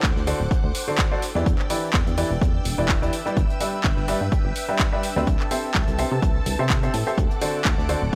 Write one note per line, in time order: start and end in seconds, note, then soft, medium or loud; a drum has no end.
0.00 0.13 D2 medium
0.00 5.85 D4 medium
0.00 0.23 E4 medium
0.00 2.09 A4 medium
0.00 1.19 C5 medium
0.00 1.22 C5 medium
0.00 1.21 F#5 medium
0.00 1.21 D6 medium
0.00 kick loud
0.00 snare loud
0.00 clap loud
0.00 closed hi-hat medium
0.16 0.33 D2 medium
0.16 snare medium
0.27 0.38 D3 medium
0.27 0.38 F#4 medium
0.27 0.38 A4 medium
0.27 0.38 C5 medium
0.27 0.38 D5 medium
0.27 closed hi-hat medium
0.27 open hi-hat loud
0.40 0.48 D1 medium
0.51 kick loud
0.51 closed hi-hat medium
0.64 0.72 D2 medium
0.75 closed hi-hat medium
0.75 open hi-hat loud
0.88 1.03 D3 medium
0.88 1.03 F#4 medium
0.88 1.03 A4 medium
0.88 1.03 C5 medium
0.88 1.03 D5 medium
0.98 kick loud
0.98 snare loud
0.98 clap loud
0.98 closed hi-hat medium
1.11 1.21 F#4 medium
1.11 1.21 A4 medium
1.11 1.21 C5 medium
1.11 1.21 D5 medium
1.22 3.35 D5 medium
1.22 3.35 G5 medium
1.22 7.14 E6 medium
1.22 snare medium
1.22 closed hi-hat medium
1.22 open hi-hat loud
1.35 1.43 E2 medium
1.35 1.45 E3 medium
1.35 1.45 E4 medium
1.35 1.45 G4 medium
1.35 1.45 B4 medium
1.35 1.45 D5 medium
1.35 snare medium
1.46 1.56 E2 loud
1.46 kick loud
1.46 closed hi-hat medium
1.59 7.85 E5 medium
1.59 clap soft
1.69 1.87 E3 medium
1.69 1.87 E4 medium
1.69 1.87 G4 medium
1.69 6.04 B4 medium
1.69 1.87 B4 medium
1.69 1.87 D5 medium
1.69 snare soft
1.69 closed hi-hat medium
1.69 open hi-hat loud
1.93 2.03 E2 medium
1.93 kick loud
1.93 snare loud
1.93 clap loud
1.93 closed hi-hat medium
2.07 2.24 E2 medium
2.07 closed hi-hat soft
2.18 2.29 E3 medium
2.18 2.29 E4 medium
2.18 2.29 G4 medium
2.18 2.29 B4 medium
2.18 2.29 D5 medium
2.18 7.18 G5 medium
2.18 closed hi-hat medium
2.18 open hi-hat loud
2.31 2.39 E1 medium
2.41 2.60 E2 medium
2.41 kick loud
2.41 closed hi-hat medium
2.65 2.75 E1 medium
2.65 closed hi-hat medium
2.65 open hi-hat loud
2.78 3.04 E1 medium
2.78 2.94 E3 medium
2.78 2.94 E4 medium
2.78 2.94 G4 medium
2.78 2.94 B4 medium
2.78 2.94 D5 medium
2.89 kick loud
2.89 snare loud
2.89 clap loud
2.89 closed hi-hat medium
3.02 3.10 E2 medium
3.02 3.11 E3 medium
3.02 3.11 E4 medium
3.02 3.11 G4 medium
3.02 3.11 B4 medium
3.02 3.11 D5 medium
3.02 closed hi-hat soft
3.13 closed hi-hat medium
3.13 open hi-hat loud
3.26 3.35 G3 medium
3.26 3.35 E4 medium
3.26 3.35 G4 medium
3.26 3.35 B4 medium
3.26 3.35 D5 medium
3.26 closed hi-hat soft
3.37 3.46 G1 loud
3.37 5.25 B4 medium
3.37 5.25 G5 medium
3.37 kick loud
3.37 closed hi-hat medium
3.50 closed hi-hat soft
3.61 3.78 G3 medium
3.61 3.78 G4 medium
3.61 3.78 B4 medium
3.61 3.78 D5 medium
3.61 3.78 E5 medium
3.61 closed hi-hat medium
3.61 open hi-hat loud
3.84 3.94 G1 medium
3.84 kick loud
3.84 snare loud
3.84 clap loud
3.84 closed hi-hat medium
3.97 4.15 G1 medium
3.97 snare soft
4.08 4.19 G3 medium
4.08 4.19 G4 medium
4.08 4.19 B4 medium
4.08 4.19 D5 medium
4.08 4.19 E5 medium
4.08 closed hi-hat medium
4.08 open hi-hat loud
4.21 4.29 G2 medium
4.32 kick loud
4.32 closed hi-hat medium
4.45 4.53 G1 medium
4.56 closed hi-hat medium
4.56 open hi-hat medium
4.69 4.84 G3 medium
4.69 4.84 G4 medium
4.69 4.84 B4 medium
4.69 4.84 D5 medium
4.69 4.84 E5 medium
4.79 kick loud
4.79 snare loud
4.79 clap loud
4.79 closed hi-hat medium
4.93 5.02 G3 medium
4.93 5.02 G4 medium
4.93 5.02 B4 medium
4.93 5.02 D5 medium
4.93 5.02 E5 medium
5.03 snare medium
5.03 closed hi-hat medium
5.03 open hi-hat loud
5.16 5.24 D2 medium
5.16 5.26 C4 medium
5.16 5.26 G4 medium
5.16 5.26 B4 medium
5.16 5.26 D5 medium
5.16 5.26 E5 medium
5.16 snare medium
5.27 5.37 C2 medium
5.27 8.15 C4 medium
5.27 8.15 A4 medium
5.27 7.16 A5 medium
5.27 kick loud
5.27 closed hi-hat medium
5.40 clap soft
5.51 5.68 C4 medium
5.51 5.68 G4 medium
5.51 5.68 A4 medium
5.51 5.68 C5 medium
5.51 5.68 E5 medium
5.51 snare soft
5.51 closed hi-hat medium
5.51 open hi-hat loud
5.74 5.84 C2 medium
5.74 kick loud
5.74 snare loud
5.74 clap loud
5.74 closed hi-hat medium
5.83 8.15 A4 medium
5.88 6.05 C2 medium
5.88 closed hi-hat soft
5.99 6.10 C4 medium
5.99 6.10 G4 medium
5.99 6.10 A4 medium
5.99 6.10 C5 medium
5.99 6.10 E5 medium
5.99 closed hi-hat medium
5.99 open hi-hat medium
6.12 6.20 C3 medium
6.22 6.41 C2 medium
6.22 kick loud
6.22 closed hi-hat medium
6.46 6.56 C2 loud
6.46 closed hi-hat medium
6.46 open hi-hat medium
6.59 6.89 C3 medium
6.59 6.75 C4 medium
6.59 6.75 G4 medium
6.59 6.75 A4 medium
6.59 6.75 C5 medium
6.59 6.75 E5 medium
6.70 kick loud
6.70 snare loud
6.70 clap loud
6.70 closed hi-hat medium
6.83 6.92 C4 medium
6.83 6.92 G4 medium
6.83 6.92 A4 medium
6.83 6.92 C5 medium
6.83 6.92 E5 medium
6.83 closed hi-hat soft
6.94 7.04 A2 medium
6.94 closed hi-hat medium
6.94 open hi-hat medium
7.07 7.16 G4 medium
7.07 7.16 A4 medium
7.07 7.16 C5 medium
7.07 7.16 E5 medium
7.07 closed hi-hat soft
7.18 7.27 D2 loud
7.18 8.15 F#5 medium
7.18 8.15 D6 medium
7.18 kick loud
7.18 closed hi-hat medium
7.31 closed hi-hat soft
7.41 7.59 D3 medium
7.41 7.59 F#4 medium
7.41 7.59 A4 medium
7.41 7.59 C5 medium
7.41 7.59 D5 medium
7.41 closed hi-hat medium
7.41 open hi-hat medium
7.47 8.15 D5 medium
7.65 7.75 D2 medium
7.65 kick loud
7.65 snare loud
7.65 clap loud
7.65 closed hi-hat medium
7.78 7.95 D2 medium
7.78 snare soft
7.89 8.00 D3 medium
7.89 8.00 F#4 medium
7.89 8.00 A4 medium
7.89 8.00 C5 medium
7.89 8.00 D5 medium
7.89 closed hi-hat medium
7.89 open hi-hat medium
8.02 8.10 D1 medium